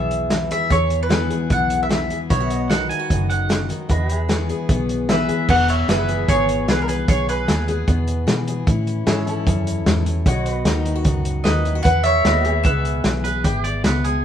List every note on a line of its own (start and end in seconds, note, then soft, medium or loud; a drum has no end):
0.00 0.51 B1 medium
0.00 0.69 E2 medium
0.00 0.31 B2 medium
0.00 0.30 E3 medium
0.00 1.10 B3 medium
0.00 0.50 G#4 medium
0.00 2.28 G#4 medium
0.00 2.28 B4 medium
0.00 0.51 E5 medium
0.00 2.29 E5 medium
0.11 closed hi-hat medium
0.30 0.68 E3 medium
0.30 snare loud
0.30 closed hi-hat medium
0.51 0.68 G#4 medium
0.51 0.72 E5 medium
0.51 closed hi-hat medium
0.70 2.30 E2 medium
0.70 1.31 E2 medium
0.70 1.29 G#4 medium
0.70 0.99 C#5 medium
0.70 kick medium
0.70 closed hi-hat medium
0.90 closed hi-hat medium
1.03 1.48 B4 medium
1.09 1.88 E3 medium
1.09 1.50 B3 medium
1.09 snare loud
1.09 closed hi-hat medium
1.30 2.09 G#4 medium
1.30 closed hi-hat medium
1.50 2.11 B1 medium
1.50 1.90 B2 medium
1.50 2.70 B3 medium
1.50 1.82 F#5 medium
1.50 kick loud
1.50 closed hi-hat medium
1.70 closed hi-hat medium
1.83 1.87 E5 medium
1.89 2.27 E3 medium
1.89 2.19 E5 medium
1.89 snare loud
1.89 closed hi-hat medium
2.10 2.28 G#4 medium
2.10 closed hi-hat medium
2.30 2.91 B1 medium
2.30 2.70 B2 medium
2.30 2.40 E4 medium
2.30 3.88 F#4 medium
2.30 3.88 B4 medium
2.30 2.69 C#5 medium
2.30 2.52 E5 medium
2.30 kick loud
2.30 closed hi-hat medium
2.40 2.90 F#4 soft
2.50 3.89 D#5 medium
2.50 closed hi-hat medium
2.70 3.68 D#3 medium
2.70 3.10 D#4 medium
2.70 2.89 F#5 medium
2.70 snare loud
2.70 closed hi-hat medium
2.89 2.99 E4 medium
2.89 3.28 G#5 medium
2.89 closed hi-hat medium
2.99 3.89 F#4 medium
3.10 3.71 F#1 medium
3.10 3.88 F#2 medium
3.10 3.88 D#4 medium
3.10 kick loud
3.10 closed hi-hat medium
3.30 4.46 F#5 medium
3.30 closed hi-hat medium
3.49 3.70 C#3 medium
3.49 snare loud
3.49 closed hi-hat medium
3.69 3.89 D#3 medium
3.69 closed hi-hat medium
3.89 5.47 E2 medium
3.89 4.50 E2 medium
3.89 4.16 F#4 medium
3.89 4.49 G#4 medium
3.89 5.48 B4 medium
3.89 4.12 D#5 medium
3.89 kick loud
3.89 closed hi-hat medium
4.09 5.49 E5 medium
4.09 closed hi-hat medium
4.16 5.48 G#4 medium
4.29 5.08 E3 medium
4.29 4.69 B3 medium
4.29 snare loud
4.29 closed hi-hat medium
4.49 5.27 G#4 medium
4.49 closed hi-hat medium
4.69 5.29 B1 medium
4.69 5.09 B2 medium
4.69 5.88 B3 medium
4.69 kick loud
4.69 closed hi-hat medium
4.89 closed hi-hat medium
5.09 5.47 E3 medium
5.09 5.47 B4 medium
5.09 5.49 E5 medium
5.09 snare loud
5.09 closed hi-hat medium
5.29 5.46 G#4 medium
5.29 closed hi-hat medium
5.48 5.88 E1 medium
5.48 7.08 E2 medium
5.48 6.09 G#4 medium
5.48 5.68 B4 medium
5.48 5.70 F#5 loud
5.48 kick loud
5.48 crash loud
5.68 5.88 C#5 medium
5.68 5.88 E5 medium
5.68 closed hi-hat medium
5.88 6.27 F#1 medium
5.88 6.68 E3 medium
5.88 6.29 B3 medium
5.88 8.65 G#4 medium
5.88 6.26 B4 medium
5.88 8.66 B4 medium
5.88 6.30 E5 medium
5.88 8.66 E5 medium
5.88 snare loud
5.88 closed hi-hat medium
6.09 6.88 G#4 medium
6.09 closed hi-hat medium
6.28 6.67 G#1 medium
6.28 6.68 B2 medium
6.28 7.47 B3 medium
6.28 6.66 G#4 medium
6.28 6.69 C#5 medium
6.28 kick loud
6.28 closed hi-hat medium
6.49 closed hi-hat medium
6.68 7.07 C2 medium
6.68 8.26 E3 medium
6.68 6.82 G#4 medium
6.68 6.81 B4 medium
6.68 snare loud
6.68 closed hi-hat medium
6.82 6.88 A#4 medium
6.88 7.07 G#4 medium
6.88 7.06 G#4 medium
6.88 7.09 B4 medium
6.88 closed hi-hat medium
7.08 7.47 B1 medium
7.08 7.68 G#4 medium
7.08 7.27 G#4 medium
7.08 7.29 C#5 medium
7.08 kick loud
7.08 closed hi-hat medium
7.29 8.04 G#4 medium
7.29 8.04 B4 medium
7.29 closed hi-hat medium
7.48 7.87 D#2 medium
7.48 7.87 B3 medium
7.48 snare loud
7.48 closed hi-hat medium
7.68 8.47 G#4 medium
7.68 closed hi-hat medium
7.88 8.27 E2 medium
7.88 8.28 B2 medium
7.88 8.68 B3 medium
7.88 kick loud
7.88 closed hi-hat medium
8.07 closed hi-hat medium
8.27 8.66 B2 loud
8.27 8.65 E3 medium
8.27 snare loud
8.27 closed hi-hat medium
8.47 8.65 G#4 medium
8.47 closed hi-hat medium
8.67 9.06 A2 medium
8.67 9.05 E3 medium
8.67 9.06 C#4 medium
8.67 9.26 E4 medium
8.67 kick loud
8.67 closed hi-hat medium
8.87 closed hi-hat medium
9.06 9.46 G#2 medium
9.06 10.24 E3 medium
9.06 9.46 C#4 medium
9.06 9.27 G#4 medium
9.06 10.26 C#5 medium
9.06 10.26 E5 medium
9.06 snare loud
9.06 closed hi-hat medium
9.27 10.26 E4 medium
9.27 10.25 A4 medium
9.27 closed hi-hat medium
9.46 9.86 E2 medium
9.46 9.85 F#2 medium
9.46 10.24 C#4 medium
9.46 kick loud
9.46 closed hi-hat medium
9.67 closed hi-hat medium
9.86 10.25 E2 medium
9.86 10.06 G#2 medium
9.86 snare loud
9.86 closed hi-hat medium
10.06 10.25 A2 medium
10.06 closed hi-hat medium
10.26 10.65 B1 medium
10.26 10.66 B2 medium
10.26 10.85 F#4 medium
10.26 11.85 F#4 medium
10.26 10.53 C#5 medium
10.26 kick loud
10.26 closed hi-hat medium
10.30 11.86 D#5 medium
10.46 closed hi-hat medium
10.53 11.85 B4 medium
10.65 11.04 D#2 medium
10.65 11.43 D#3 medium
10.65 11.05 D#4 medium
10.65 snare loud
10.65 closed hi-hat medium
10.85 10.95 E4 medium
10.85 closed hi-hat medium
10.95 11.65 F#4 medium
11.05 11.44 C#2 medium
11.05 11.83 F#2 medium
11.05 11.83 D#4 medium
11.05 kick loud
11.05 closed hi-hat medium
11.25 closed hi-hat medium
11.44 11.84 D#2 medium
11.44 11.82 D#3 medium
11.44 11.82 B4 medium
11.44 11.82 D#5 medium
11.44 snare loud
11.44 closed hi-hat medium
11.65 11.75 E4 medium
11.65 closed hi-hat medium
11.75 11.85 F#4 medium
11.83 12.24 E2 medium
11.83 12.45 G#4 medium
11.83 12.03 B4 medium
11.83 12.05 F#5 loud
11.83 kick loud
11.83 closed hi-hat medium
12.04 12.61 C#5 medium
12.04 12.62 E5 medium
12.04 closed hi-hat medium
12.25 12.64 D#2 loud
12.25 12.65 B3 medium
12.25 12.52 F#4 medium
12.25 14.25 B4 medium
12.25 12.49 D#5 medium
12.25 snare loud
12.25 closed hi-hat medium
12.45 13.23 G#4 medium
12.45 14.25 E5 medium
12.45 closed hi-hat medium
12.52 14.25 G#4 medium
12.64 13.04 C#2 medium
12.64 13.05 B2 medium
12.64 13.85 B3 soft
12.64 14.25 B4 medium
12.64 14.25 E5 loud
12.64 kick loud
12.64 closed hi-hat medium
12.85 closed hi-hat medium
13.04 13.44 B1 medium
13.04 13.42 E3 medium
13.04 snare loud
13.04 closed hi-hat medium
13.24 13.42 G#4 medium
13.24 13.44 B4 medium
13.24 closed hi-hat medium
13.44 13.84 G#1 medium
13.44 13.64 G4 medium
13.44 14.04 G#4 medium
13.44 kick loud
13.44 closed hi-hat medium
13.64 13.84 D5 medium
13.64 closed hi-hat medium
13.84 14.23 C#2 medium
13.84 14.25 B3 medium
13.84 14.04 B4 medium
13.84 snare loud
13.84 closed hi-hat medium
14.04 14.25 G#4 medium
14.04 closed hi-hat medium